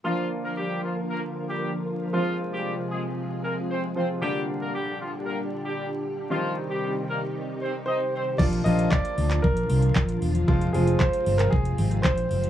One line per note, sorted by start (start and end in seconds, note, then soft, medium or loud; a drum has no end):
0.04 2.11 D3 medium
0.04 2.09 F3 medium
0.04 4.18 F3 medium
0.04 0.27 F3 medium
0.04 2.09 A#3 medium
0.04 2.11 A#3 medium
0.04 2.09 D4 medium
0.04 0.27 F4 loud
0.04 4.18 F4 medium
0.04 2.10 F4 medium
0.04 2.11 A#4 medium
0.44 0.55 A#3 medium
0.44 0.55 A#4 medium
0.57 0.79 G3 medium
0.57 0.79 G4 medium
0.83 0.94 F3 medium
0.83 0.94 F4 medium
1.09 1.21 A#3 medium
1.09 1.20 A#4 medium
1.49 1.71 G3 medium
1.49 1.71 G4 medium
2.13 4.20 C3 medium
2.13 3.92 F3 medium
2.13 2.36 F3 medium
2.13 3.92 G#3 medium
2.13 4.20 G#3 medium
2.13 3.92 C4 medium
2.13 2.36 F4 medium
2.13 3.93 F4 medium
2.13 4.20 G#4 medium
2.52 2.75 G3 medium
2.52 2.75 G4 medium
2.91 3.03 G#3 medium
2.91 3.02 G#4 medium
3.44 3.55 A#3 medium
3.44 3.55 A#4 medium
3.70 3.81 C4 medium
3.70 3.81 C5 medium
3.96 4.22 F3 soft
3.96 4.22 G#3 soft
3.96 4.22 C4 soft
3.96 4.08 C4 medium
3.96 4.22 F4 soft
3.96 4.07 C5 medium
4.21 6.29 A#2 medium
4.21 6.26 D3 medium
4.21 6.29 D3 medium
4.21 6.27 G3 medium
4.21 8.36 G3 medium
4.21 4.44 G3 medium
4.21 6.27 A#3 medium
4.21 6.27 D4 medium
4.21 6.29 D4 medium
4.21 4.44 G4 loud
4.21 8.36 G4 medium
4.61 4.73 A#3 medium
4.61 4.72 A#4 medium
4.74 4.97 G3 medium
4.74 4.96 G4 medium
5.00 5.12 F3 soft
5.00 5.11 F4 medium
5.26 5.38 A#3 medium
5.26 5.37 A#4 medium
5.65 5.88 G3 medium
5.65 5.88 G4 medium
6.30 8.37 C3 medium
6.30 8.35 D#3 medium
6.30 8.37 D#3 medium
6.30 6.53 F3 medium
6.30 8.35 G3 medium
6.30 8.35 C4 medium
6.30 8.37 D#4 medium
6.30 8.36 D#4 medium
6.30 6.53 F4 medium
6.70 6.92 G3 medium
6.70 6.92 G4 medium
7.09 7.21 A#3 medium
7.09 7.20 A#4 medium
7.62 7.73 C4 medium
7.62 7.72 C5 medium
7.86 7.99 D#4 medium
7.86 8.40 C5 medium
7.86 7.98 D#5 medium
8.14 8.25 C4 medium
8.14 8.25 C5 medium
8.38 8.60 A#1 loud
8.38 10.46 A#2 medium
8.38 10.46 D3 medium
8.38 8.58 F3 medium
8.38 12.50 F3 medium
8.38 8.58 A#3 medium
8.38 10.46 D4 medium
8.38 8.58 D4 medium
8.38 12.50 F4 medium
8.38 8.58 F4 medium
8.38 8.44 D5 loud
8.38 kick loud
8.38 crash loud
8.53 closed hi-hat medium
8.64 8.86 A#1 loud
8.64 9.41 F3 medium
8.64 9.41 A#3 medium
8.64 9.41 D4 medium
8.64 9.41 F4 medium
8.64 8.89 D#5 loud
8.64 open hi-hat medium
8.79 closed hi-hat medium
8.90 9.45 D5 loud
8.90 kick loud
8.90 clap loud
9.05 closed hi-hat medium
9.18 9.38 D2 medium
9.18 open hi-hat medium
9.31 clap medium
9.31 closed hi-hat medium
9.42 9.64 A#1 medium
9.42 10.17 A#4 medium
9.42 kick loud
9.57 closed hi-hat medium
9.70 9.90 C2 loud
9.70 open hi-hat medium
9.83 closed hi-hat medium
9.96 10.16 A#1 loud
9.96 kick loud
9.96 clap loud
10.09 closed hi-hat medium
10.22 10.43 E1 medium
10.22 open hi-hat medium
10.35 closed hi-hat medium
10.48 10.69 F1 loud
10.48 12.50 G#2 medium
10.48 12.50 C3 medium
10.48 10.67 F3 medium
10.48 10.67 G#3 medium
10.48 10.67 C4 medium
10.48 12.50 C4 medium
10.48 10.67 F4 loud
10.48 kick loud
10.61 closed hi-hat medium
10.73 10.95 F1 loud
10.73 11.50 F3 medium
10.73 11.50 G#3 medium
10.73 11.50 C4 medium
10.73 11.50 F4 medium
10.73 11.00 G#4 medium
10.73 open hi-hat medium
10.87 closed hi-hat medium
10.99 11.40 C5 medium
10.99 kick loud
10.99 clap loud
11.13 closed hi-hat medium
11.26 11.47 G1 medium
11.26 open hi-hat medium
11.38 11.51 A#4 medium
11.38 clap medium
11.38 closed hi-hat medium
11.51 11.73 F1 medium
11.51 12.05 G#4 medium
11.51 kick loud
11.65 closed hi-hat medium
11.78 11.99 G#1 medium
11.78 open hi-hat medium
11.91 closed hi-hat medium
12.02 12.25 A#1 loud
12.02 12.50 C5 loud
12.02 kick loud
12.02 clap loud
12.18 closed hi-hat medium
12.31 12.50 F#1 medium
12.31 open hi-hat medium
12.44 closed hi-hat medium